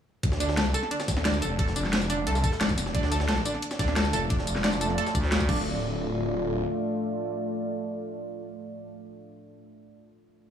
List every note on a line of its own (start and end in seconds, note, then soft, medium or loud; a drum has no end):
0.23 0.73 D2 loud
0.23 kick loud
0.23 closed hi-hat medium
0.23 closed hi-hat loud
0.32 snare medium
0.40 0.56 D4 loud
0.40 closed hi-hat medium
0.40 tambourine medium
0.49 snare medium
0.57 0.69 A4 medium
0.57 snare loud
0.57 closed hi-hat medium
0.57 closed hi-hat loud
0.66 closed hi-hat soft
0.74 0.81 A4 loud
0.74 closed hi-hat medium
0.74 tambourine medium
0.83 snare soft
0.91 1.07 D4 medium
0.91 closed hi-hat medium
0.91 closed hi-hat loud
1.00 snare medium
1.00 snare soft
1.00 tambourine soft
1.08 1.41 D2 medium
1.08 kick loud
1.08 snare soft
1.08 closed hi-hat medium
1.08 tambourine medium
1.17 snare soft
1.17 snare medium
1.25 1.41 D4 loud
1.25 snare loud
1.25 closed hi-hat medium
1.25 closed hi-hat loud
1.34 tambourine soft
1.42 2.25 F1 loud
1.42 1.54 A4 medium
1.42 closed hi-hat medium
1.42 tambourine medium
1.59 1.66 A4 loud
1.59 kick loud
1.59 closed hi-hat medium
1.67 snare soft
1.76 1.92 D4 medium
1.76 closed hi-hat medium
1.76 tambourine medium
1.84 snare soft
1.93 snare loud
1.93 closed hi-hat loud
1.93 open hi-hat medium
2.01 closed hi-hat soft
2.01 tambourine soft
2.10 2.26 D4 loud
2.10 closed hi-hat medium
2.10 tambourine medium
2.27 2.42 C2 loud
2.27 2.39 A4 medium
2.27 closed hi-hat medium
2.35 snare medium
2.35 tambourine soft
2.44 2.51 A4 loud
2.44 kick loud
2.44 closed hi-hat medium
2.44 tambourine medium
2.52 snare soft
2.61 2.93 F1 loud
2.61 2.77 D4 medium
2.61 snare loud
2.61 closed hi-hat medium
2.69 kick medium
2.69 tambourine soft
2.78 snare soft
2.78 closed hi-hat medium
2.78 tambourine medium
2.86 snare soft
2.94 3.44 D2 loud
2.94 5.46 A3 medium
2.94 3.11 D4 loud
2.94 5.46 F4 medium
2.94 5.46 D5 medium
2.94 kick loud
2.94 closed hi-hat medium
3.03 snare medium
3.11 3.23 A4 medium
3.11 closed hi-hat medium
3.11 tambourine medium
3.20 snare medium
3.28 3.36 A4 loud
3.28 snare loud
3.28 closed hi-hat medium
3.37 closed hi-hat soft
3.45 3.62 D4 medium
3.45 closed hi-hat medium
3.45 tambourine medium
3.54 snare soft
3.62 closed hi-hat medium
3.71 snare medium
3.71 snare soft
3.71 tambourine soft
3.79 4.12 D2 loud
3.79 3.95 D4 loud
3.79 kick loud
3.79 snare soft
3.79 closed hi-hat medium
3.79 tambourine medium
3.88 snare soft
3.88 snare medium
3.96 4.08 A4 medium
3.96 snare loud
3.96 closed hi-hat medium
4.05 tambourine soft
4.13 4.97 F1 loud
4.13 4.20 A4 loud
4.13 closed hi-hat medium
4.13 tambourine medium
4.30 4.46 D4 medium
4.30 kick loud
4.30 closed hi-hat medium
4.39 snare soft
4.47 closed hi-hat medium
4.47 tambourine medium
4.56 snare soft
4.64 4.80 D4 loud
4.64 snare loud
4.64 closed hi-hat medium
4.64 open hi-hat medium
4.73 closed hi-hat soft
4.73 tambourine soft
4.81 4.93 A4 medium
4.81 closed hi-hat medium
4.81 tambourine medium
4.90 snare soft
4.98 5.05 A4 loud
4.98 closed hi-hat loud
4.98 closed hi-hat medium
5.06 snare soft
5.06 tambourine soft
5.15 5.49 D2 loud
5.15 5.27 D4 medium
5.15 kick loud
5.15 closed hi-hat medium
5.15 tambourine medium
5.23 snare soft
5.32 snare loud
5.32 closed hi-hat medium
5.40 kick medium
5.40 tambourine soft
5.49 6.63 D1 loud
5.49 9.02 A3 medium
5.49 5.80 D4 loud
5.49 9.02 F4 medium
5.49 9.02 D5 medium
5.49 kick loud
5.49 crash medium